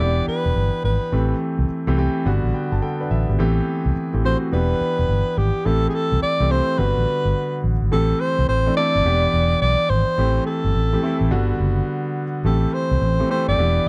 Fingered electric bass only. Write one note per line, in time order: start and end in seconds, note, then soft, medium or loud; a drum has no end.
0.00 0.19 E1 loud
0.28 muted fingered electric bass stroke medium
0.46 0.53 E1 medium
0.56 0.69 G1 medium
0.84 0.97 G#1 loud
1.12 1.32 A1 medium
1.59 1.66 C2 loud
1.87 2.07 C2 medium
2.26 2.38 G1 medium
2.44 2.51 A1 medium
2.72 2.79 G1 medium
3.11 3.23 A1 medium
3.29 3.36 G#1 medium
3.39 3.59 A1 loud
3.86 3.93 C2 medium
4.14 4.34 A1 medium
4.53 4.72 E1 loud
4.81 muted fingered electric bass stroke soft
4.99 5.06 E1 medium
5.09 5.22 G1 medium
5.37 5.50 G#1 medium
5.66 5.86 A1 medium
6.12 6.19 C2 medium
6.40 6.60 C2 medium
6.79 6.91 G1 loud
6.97 7.04 A1 medium
7.25 7.32 G1 medium
7.64 7.76 A1 medium
7.82 7.89 G#1 medium
7.92 8.12 A1 medium
8.39 8.46 C2 medium
8.49 8.68 A1 medium
8.95 9.02 G1 medium
9.05 9.25 E1 loud
9.33 9.53 E1 loud
9.62 9.74 B1 medium
9.90 10.03 G#1 loud
10.18 10.38 A1 loud
10.64 10.72 G1 medium
10.75 10.95 A1 medium
11.21 11.28 A1 medium
11.31 11.51 G1 medium
11.60 11.79 F#1 medium
12.44 12.64 A1 loud
12.91 12.98 C2 medium
13.02 13.21 A1 loud
13.48 13.55 G1 medium
13.58 13.78 E1 loud